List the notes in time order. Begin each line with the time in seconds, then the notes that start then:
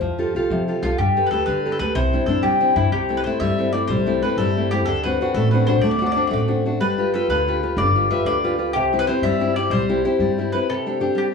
0.01 F2 F3
0.18 F4 G4 A4
0.35 C2 F4 G4 A4
0.50 C3 F3
0.68 F4 G4 A4
0.83 C2 F4 G4 A4
0.98 G2 G3 G4
1.17 G4 A4 B4
1.26 B4
1.31 D2 G4 A4 B4
1.46 D3 G3 B4
1.65 G4 A4 B4
1.72 A4
1.79 D2 G4 A4 B4
1.95 C2 C3 C5
2.13 C4 D4 E4
2.26 G2 C4 D4 E4 A4
2.43 C3 G3 G4
2.60 C4 D4 E4
2.76 G2 C4 D4 E4
2.92 C2 C3 G4
3.09 A3 C4 E4
3.17 B4
3.24 A3 C4 E4 C5
3.40 G2 G3 E5
3.58 A3 C4 E4
3.73 A3 C4 E4 D5
3.88 C2 G3 C5
4.06 A3 C4 E4
4.23 A3 C4 E4 B4
4.37 G2 G3 A4
4.57 A3 C4 E4
4.71 A3 C4 E4 G4
4.85 D2 D3 A4
5.03 C4 D4 F#4 B4
5.21 C4 D4 F#4
5.34 A1 A3 A4
5.51 C4 D4 F#4 B4
5.67 C4 D4 F#4 C5
5.81 D2 A3 D5
5.91 D5
5.99 C4 D4 F#4 D5
6.06 D5
6.12 D5
6.16 C4 D4 F#4
6.21 D5
6.27 A1 A3 D5
6.33 D5
6.48 C4 D4 F#4
6.66 C4 D4 F#4
6.80 G1 G3 B4
6.98 F4 G4 B4
7.14 F4 G4 A4 B4
7.28 D2 D3 B4
7.48 F4 G4 B4
7.63 F4 G4 B4
7.77 G1 D3 D5
7.95 F4 G4 B4
8.10 F4 G4 B4 E5
8.25 D2 D3 D5
8.44 F4 G4 B4
8.59 F4 G4 B4
8.73 C2 C3 G4
8.93 C4 E4 G4
8.99 B4
9.07 C4 E4 G4 C5
9.22 G2 G3 E5
9.40 C4 E4 G4
9.56 C4 E4 G4 D5
9.70 C2 G3 C5
9.89 C4 E4 G4
10.05 C4 E4 G4
10.19 G2 G3
10.38 C4 E4 G4
10.52 C4 E4 G4 B4
10.69 C3 A4
10.86 C4 D4 G4
11.00 C4 D4 G4
11.15 G3 G4